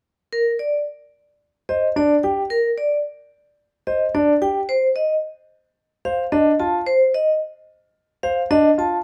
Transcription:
0.33 0.50 A#4 medium
0.59 0.77 D5 soft
1.69 1.87 C5 medium
1.69 1.87 D#5 soft
1.96 2.14 D4 medium
1.96 2.14 D5 medium
2.23 2.41 G4 medium
2.23 2.41 G5 medium
2.50 2.68 A#4 medium
2.78 2.96 D5 medium
3.87 4.05 C5 medium
3.87 4.05 D#5 soft
4.15 4.32 D4 medium
4.15 4.32 D5 medium
4.42 4.59 G4 medium
4.42 4.59 G5 medium
4.69 4.87 C5 medium
4.96 5.14 D#5 medium
6.05 6.23 C5 medium
6.05 6.23 F5 medium
6.32 6.50 D4 medium
6.32 6.50 D#5 medium
6.60 6.77 F4 medium
6.60 6.77 A5 medium
6.86 7.05 C5 medium
7.14 7.32 D#5 medium
8.23 8.41 C5 medium
8.23 8.41 F5 medium
8.51 8.68 D4 medium
8.51 8.68 D#5 medium
8.78 8.96 F4 medium
8.78 8.96 A5 medium

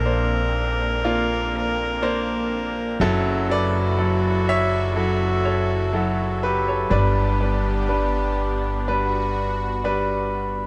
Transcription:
0.00 2.96 A#1 medium
0.00 2.96 A#2 medium
0.00 0.06 A#3 medium
0.00 2.97 A#3 medium
0.00 2.96 C4 medium
0.00 0.06 D4 medium
0.00 2.95 D4 medium
0.00 1.02 A4 medium
0.00 3.02 A#4 loud
0.00 0.06 C5 loud
0.00 3.02 D5 medium
0.00 3.02 F5 medium
0.06 0.89 A#3 medium
0.06 0.89 D4 medium
0.06 0.89 C5 medium
1.04 1.88 A#3 medium
1.04 1.87 D4 medium
1.04 1.88 F4 medium
2.02 2.85 A#3 medium
2.02 2.85 D4 medium
2.02 2.86 C5 medium
3.00 6.86 F#1 medium
3.00 6.87 F#1 medium
3.00 6.87 F#2 medium
3.00 6.88 C#3 medium
3.00 3.42 F#3 loud
3.00 6.87 F#3 medium
3.00 3.42 E4 medium
3.00 6.87 E4 medium
3.00 6.93 F#4 loud
3.00 3.42 A4 loud
3.00 6.87 A4 medium
3.50 3.91 F#3 medium
3.50 3.91 E4 medium
3.50 3.91 A4 medium
3.50 4.44 B4 medium
3.50 4.44 D5 loud
3.98 4.81 F#3 medium
3.98 4.81 E4 medium
3.98 4.81 A4 medium
4.49 5.41 C#5 medium
4.49 5.48 E5 loud
4.95 5.78 F#3 medium
4.95 5.78 E4 medium
4.95 5.45 A4 medium
5.45 5.91 A4 medium
5.45 5.95 C#5 medium
5.93 6.76 F#3 medium
5.93 6.76 E4 medium
5.93 6.39 F#4 medium
5.93 6.43 A4 medium
6.43 6.66 G4 medium
6.43 6.67 B4 medium
6.68 6.91 A4 medium
6.68 6.92 C#5 medium
6.90 10.67 G1 medium
6.90 10.67 G2 medium
6.90 7.32 G3 medium
6.90 10.67 B3 medium
6.90 7.32 D4 medium
6.90 10.67 D4 medium
6.90 10.33 D4 medium
6.90 8.84 G4 medium
6.90 7.32 B4 loud
6.90 9.80 D5 medium
7.40 7.82 G3 medium
7.40 7.81 D4 medium
7.40 7.82 B4 medium
7.89 8.72 G3 medium
7.89 8.72 D4 medium
7.89 8.72 B4 medium
8.87 9.70 G3 medium
8.87 9.70 D4 medium
8.87 10.67 F#4 medium
8.87 9.70 B4 medium
9.84 10.67 G3 medium
9.84 10.67 D4 medium
9.84 10.67 B4 medium

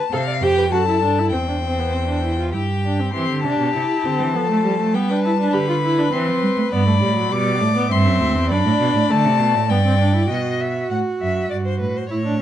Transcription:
0.00 0.14 A5 medium
0.11 0.42 C3 medium
0.11 0.21 A4 medium
0.11 0.27 C5 medium
0.11 0.44 F5 medium
0.28 0.33 D5 medium
0.41 0.72 F2 medium
0.41 0.71 G4 medium
0.41 0.56 C5 medium
0.41 0.74 G5 medium
0.57 0.63 B4 medium
0.71 1.02 F#2 medium
0.71 0.87 F#4 medium
0.71 1.35 A4 medium
0.71 1.32 A5 medium
0.88 1.02 E4 medium
1.01 1.33 G2 medium
1.01 1.20 D4 medium
1.18 1.34 E4 medium
1.31 2.54 E2 medium
1.31 1.47 C4 medium
1.31 2.54 C5 medium
1.31 2.51 G5 medium
1.49 1.54 D4 soft
1.63 1.80 C4 medium
1.79 1.95 B3 soft
1.94 2.08 C4 medium
2.08 2.23 D4 medium
2.24 2.38 E4 medium
2.39 2.53 F4 medium
2.53 3.13 G2 medium
2.53 2.62 E4 soft
2.53 3.13 G4 medium
2.53 3.13 G5 soft
2.84 3.01 D4 soft
2.99 3.14 C4 medium
3.14 3.28 E3 medium
3.14 3.42 C4 medium
3.14 4.31 G4 medium
3.14 3.42 C6 medium
3.29 3.45 D3 medium
3.44 3.58 C3 medium
3.44 3.74 D4 medium
3.44 4.96 A5 medium
3.59 3.74 B2 medium
3.75 3.83 C3 medium
3.75 4.07 E4 medium
4.04 4.21 D3 medium
4.04 4.37 C4 medium
4.19 4.35 E3 medium
4.33 4.95 F3 medium
4.33 4.50 B3 medium
4.33 4.96 A4 medium
4.51 4.65 A3 medium
4.66 4.80 G3 medium
4.80 4.96 A3 medium
4.93 5.52 G3 medium
4.93 5.12 B3 medium
4.93 5.53 B4 medium
4.93 5.23 G5 medium
5.10 5.24 D4 medium
5.24 5.31 E4 medium
5.24 5.55 A5 medium
5.40 5.56 D4 medium
5.53 6.11 D3 medium
5.53 5.68 G4 medium
5.53 6.74 B4 medium
5.53 6.14 B5 medium
5.69 5.75 F4 medium
5.84 6.00 E4 medium
5.99 6.12 D4 medium
6.12 6.28 E3 medium
6.12 6.71 C4 medium
6.12 6.71 C6 medium
6.27 6.41 F3 medium
6.42 6.48 G3 medium
6.57 6.63 A3 medium
6.72 7.02 G2 medium
6.72 6.86 B3 medium
6.72 7.32 D5 medium
6.72 7.34 B5 medium
6.86 6.92 A3 medium
7.01 7.30 A2 medium
7.01 7.15 G3 medium
7.16 7.33 F#3 medium
7.31 7.62 B2 medium
7.31 7.62 G3 medium
7.31 7.90 D5 medium
7.31 7.93 D6 medium
7.60 7.89 A2 medium
7.60 7.75 A3 medium
7.76 7.91 B3 medium
7.90 8.07 G2 medium
7.90 8.52 C4 medium
7.90 8.49 E5 medium
7.90 8.51 C6 medium
8.06 8.21 F#2 medium
8.20 8.36 D2 medium
8.35 8.51 E2 medium
8.50 8.64 F#2 medium
8.50 9.12 D4 medium
8.50 9.68 D5 medium
8.50 9.12 B5 medium
8.65 8.71 A2 medium
8.80 8.94 B2 medium
8.95 9.01 A2 medium
9.10 9.27 D3 medium
9.10 9.70 A3 medium
9.10 9.71 A5 medium
9.25 9.41 C3 medium
9.40 9.56 B2 medium
9.55 9.71 A2 medium
9.69 10.29 G2 medium
9.69 9.76 B3 medium
9.69 10.29 D5 medium
9.69 10.30 G5 medium
9.85 9.99 C4 medium
10.00 10.14 D4 medium
10.15 10.30 E4 medium
10.30 10.86 B2 medium
10.30 12.06 F#4 medium
10.30 10.62 D#5 medium
10.61 10.90 E5 medium
10.90 10.98 A2 medium
10.90 10.99 F#5 medium
11.20 11.49 F#2 medium
11.20 11.50 E5 medium
11.50 11.81 G2 medium
11.50 11.57 D5 medium
11.66 11.80 C5 medium
11.80 12.09 A2 medium
11.80 11.98 B4 medium
11.96 12.10 C5 medium
12.10 12.41 A2 medium
12.10 12.16 E4 medium
12.10 12.42 C#5 medium
12.25 12.39 D4 medium

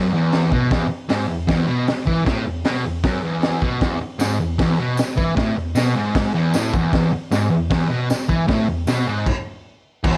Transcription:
0.00 0.12 F#2 loud
0.13 0.51 E2 loud
0.32 snare loud
0.32 open hi-hat medium
0.52 0.71 B2 loud
0.52 kick medium
0.71 0.88 E2 medium
0.71 kick loud
0.71 snare loud
0.71 open hi-hat medium
0.89 muted distorted electric guitar stroke medium
1.09 1.28 G#2 loud
1.09 snare loud
1.09 open hi-hat medium
1.28 1.44 E2 medium
1.47 1.67 E2 loud
1.47 kick loud
1.47 snare loud
1.47 open hi-hat medium
1.67 1.86 B2 loud
1.87 muted distorted electric guitar stroke medium
1.87 snare loud
1.87 open hi-hat medium
2.06 2.25 E3 medium
2.06 kick medium
2.25 2.45 A2 loud
2.25 kick loud
2.25 snare loud
2.25 open hi-hat medium
2.45 2.61 E2 medium
2.65 2.84 B2 loud
2.65 snare loud
2.65 open hi-hat medium
2.85 3.01 E2 medium
3.04 3.23 F#2 loud
3.04 kick loud
3.04 snare loud
3.04 open hi-hat medium
3.24 3.62 E2 loud
3.42 snare loud
3.42 open hi-hat medium
3.61 3.81 B2 loud
3.61 kick medium
3.81 4.00 E2 medium
3.81 kick loud
3.81 snare loud
3.81 open hi-hat medium
4.01 muted distorted electric guitar stroke medium
4.19 4.39 G#2 loud
4.19 snare loud
4.19 open hi-hat medium
4.19 tambourine loud
4.40 4.56 E2 medium
4.59 4.78 E2 loud
4.59 kick loud
4.59 snare loud
4.59 open hi-hat medium
4.79 4.98 B2 loud
4.97 muted distorted electric guitar stroke medium
4.97 snare loud
4.97 open hi-hat medium
4.97 tambourine loud
5.17 5.35 E3 loud
5.17 kick medium
5.36 5.55 A2 medium
5.36 kick loud
5.36 snare loud
5.36 open hi-hat medium
5.55 5.72 E2 medium
5.75 5.94 B2 loud
5.75 snare loud
5.75 open hi-hat medium
5.75 tambourine loud
5.96 6.34 G#2 loud
6.15 kick loud
6.15 snare loud
6.15 open hi-hat medium
6.34 6.53 E2 loud
6.54 6.73 A2 loud
6.54 snare loud
6.54 open hi-hat medium
6.54 tambourine loud
6.74 6.92 E2 loud
6.74 kick medium
6.93 7.12 E2 loud
6.93 kick loud
6.93 snare loud
6.93 open hi-hat medium
7.13 muted distorted electric guitar stroke medium
7.31 7.50 G#2 loud
7.31 snare loud
7.31 open hi-hat medium
7.31 tambourine loud
7.50 7.66 E2 medium
7.70 7.89 E2 medium
7.70 kick loud
7.70 snare loud
7.70 open hi-hat medium
7.89 8.09 B2 loud
8.09 muted distorted electric guitar stroke medium
8.09 snare loud
8.09 open hi-hat medium
8.09 tambourine medium
8.28 8.47 E3 loud
8.28 kick medium
8.47 8.67 A2 medium
8.47 kick loud
8.47 snare loud
8.47 open hi-hat medium
8.68 8.83 E2 medium
8.87 9.06 B2 loud
8.87 snare loud
8.87 open hi-hat medium
8.87 tambourine medium
9.07 9.26 G#2 medium
9.26 kick loud
9.26 crash loud
10.04 10.17 E2 medium
10.04 kick loud
10.04 crash loud

